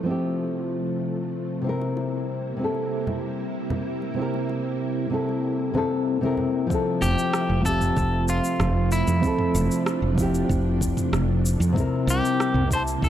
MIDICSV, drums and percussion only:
0, 0, Header, 1, 2, 480
1, 0, Start_track
1, 0, Key_signature, -1, "major"
1, 0, Tempo, 631579
1, 1257, Time_signature, 4, 2, 24, 8
1, 9948, End_track
2, 0, Start_track
2, 0, Title_t, "Drums"
2, 1380, Note_on_c, 9, 60, 54
2, 1456, Note_off_c, 9, 60, 0
2, 1496, Note_on_c, 9, 60, 54
2, 1572, Note_off_c, 9, 60, 0
2, 2088, Note_on_c, 9, 60, 38
2, 2164, Note_off_c, 9, 60, 0
2, 2334, Note_on_c, 9, 64, 74
2, 2410, Note_off_c, 9, 64, 0
2, 2814, Note_on_c, 9, 63, 54
2, 2814, Note_on_c, 9, 64, 85
2, 2890, Note_off_c, 9, 63, 0
2, 2890, Note_off_c, 9, 64, 0
2, 3055, Note_on_c, 9, 60, 42
2, 3131, Note_off_c, 9, 60, 0
2, 3297, Note_on_c, 9, 60, 57
2, 3373, Note_off_c, 9, 60, 0
2, 3416, Note_on_c, 9, 60, 58
2, 3492, Note_off_c, 9, 60, 0
2, 4019, Note_on_c, 9, 60, 43
2, 4095, Note_off_c, 9, 60, 0
2, 4368, Note_on_c, 9, 63, 73
2, 4444, Note_off_c, 9, 63, 0
2, 4738, Note_on_c, 9, 63, 55
2, 4814, Note_off_c, 9, 63, 0
2, 4844, Note_on_c, 9, 64, 65
2, 4920, Note_off_c, 9, 64, 0
2, 5094, Note_on_c, 9, 36, 108
2, 5100, Note_on_c, 9, 69, 33
2, 5170, Note_off_c, 9, 36, 0
2, 5176, Note_off_c, 9, 69, 0
2, 5332, Note_on_c, 9, 45, 81
2, 5337, Note_on_c, 9, 69, 77
2, 5408, Note_off_c, 9, 45, 0
2, 5413, Note_off_c, 9, 69, 0
2, 5462, Note_on_c, 9, 69, 41
2, 5538, Note_off_c, 9, 69, 0
2, 5574, Note_on_c, 9, 37, 112
2, 5579, Note_on_c, 9, 69, 36
2, 5650, Note_off_c, 9, 37, 0
2, 5655, Note_off_c, 9, 69, 0
2, 5814, Note_on_c, 9, 36, 96
2, 5820, Note_on_c, 9, 69, 80
2, 5890, Note_off_c, 9, 36, 0
2, 5896, Note_off_c, 9, 69, 0
2, 5934, Note_on_c, 9, 45, 76
2, 5939, Note_on_c, 9, 69, 44
2, 6010, Note_off_c, 9, 45, 0
2, 6015, Note_off_c, 9, 69, 0
2, 6055, Note_on_c, 9, 36, 108
2, 6056, Note_on_c, 9, 69, 33
2, 6131, Note_off_c, 9, 36, 0
2, 6132, Note_off_c, 9, 69, 0
2, 6296, Note_on_c, 9, 69, 74
2, 6372, Note_off_c, 9, 69, 0
2, 6417, Note_on_c, 9, 69, 49
2, 6493, Note_off_c, 9, 69, 0
2, 6534, Note_on_c, 9, 37, 97
2, 6534, Note_on_c, 9, 45, 81
2, 6539, Note_on_c, 9, 69, 30
2, 6610, Note_off_c, 9, 37, 0
2, 6610, Note_off_c, 9, 45, 0
2, 6615, Note_off_c, 9, 69, 0
2, 6778, Note_on_c, 9, 69, 76
2, 6854, Note_off_c, 9, 69, 0
2, 6898, Note_on_c, 9, 69, 50
2, 6974, Note_off_c, 9, 69, 0
2, 7014, Note_on_c, 9, 36, 120
2, 7018, Note_on_c, 9, 69, 34
2, 7090, Note_off_c, 9, 36, 0
2, 7094, Note_off_c, 9, 69, 0
2, 7133, Note_on_c, 9, 45, 82
2, 7209, Note_off_c, 9, 45, 0
2, 7260, Note_on_c, 9, 69, 89
2, 7336, Note_off_c, 9, 69, 0
2, 7383, Note_on_c, 9, 69, 46
2, 7459, Note_off_c, 9, 69, 0
2, 7496, Note_on_c, 9, 37, 110
2, 7501, Note_on_c, 9, 69, 35
2, 7572, Note_off_c, 9, 37, 0
2, 7577, Note_off_c, 9, 69, 0
2, 7735, Note_on_c, 9, 36, 109
2, 7736, Note_on_c, 9, 45, 76
2, 7741, Note_on_c, 9, 69, 78
2, 7811, Note_off_c, 9, 36, 0
2, 7812, Note_off_c, 9, 45, 0
2, 7817, Note_off_c, 9, 69, 0
2, 7863, Note_on_c, 9, 69, 43
2, 7939, Note_off_c, 9, 69, 0
2, 7976, Note_on_c, 9, 36, 120
2, 7984, Note_on_c, 9, 69, 36
2, 8052, Note_off_c, 9, 36, 0
2, 8060, Note_off_c, 9, 69, 0
2, 8216, Note_on_c, 9, 36, 105
2, 8224, Note_on_c, 9, 69, 80
2, 8292, Note_off_c, 9, 36, 0
2, 8300, Note_off_c, 9, 69, 0
2, 8338, Note_on_c, 9, 45, 85
2, 8343, Note_on_c, 9, 69, 49
2, 8414, Note_off_c, 9, 45, 0
2, 8419, Note_off_c, 9, 69, 0
2, 8459, Note_on_c, 9, 37, 107
2, 8465, Note_on_c, 9, 69, 33
2, 8535, Note_off_c, 9, 37, 0
2, 8541, Note_off_c, 9, 69, 0
2, 8707, Note_on_c, 9, 69, 83
2, 8783, Note_off_c, 9, 69, 0
2, 8830, Note_on_c, 9, 69, 50
2, 8906, Note_off_c, 9, 69, 0
2, 8938, Note_on_c, 9, 36, 116
2, 8946, Note_on_c, 9, 45, 73
2, 8951, Note_on_c, 9, 69, 36
2, 9014, Note_off_c, 9, 36, 0
2, 9022, Note_off_c, 9, 45, 0
2, 9027, Note_off_c, 9, 69, 0
2, 9188, Note_on_c, 9, 69, 93
2, 9264, Note_off_c, 9, 69, 0
2, 9311, Note_on_c, 9, 69, 42
2, 9387, Note_off_c, 9, 69, 0
2, 9425, Note_on_c, 9, 37, 112
2, 9430, Note_on_c, 9, 69, 36
2, 9501, Note_off_c, 9, 37, 0
2, 9506, Note_off_c, 9, 69, 0
2, 9541, Note_on_c, 9, 45, 76
2, 9617, Note_off_c, 9, 45, 0
2, 9658, Note_on_c, 9, 36, 103
2, 9665, Note_on_c, 9, 69, 80
2, 9734, Note_off_c, 9, 36, 0
2, 9741, Note_off_c, 9, 69, 0
2, 9785, Note_on_c, 9, 69, 45
2, 9861, Note_off_c, 9, 69, 0
2, 9898, Note_on_c, 9, 36, 107
2, 9909, Note_on_c, 9, 69, 35
2, 9948, Note_off_c, 9, 36, 0
2, 9948, Note_off_c, 9, 69, 0
2, 9948, End_track
0, 0, End_of_file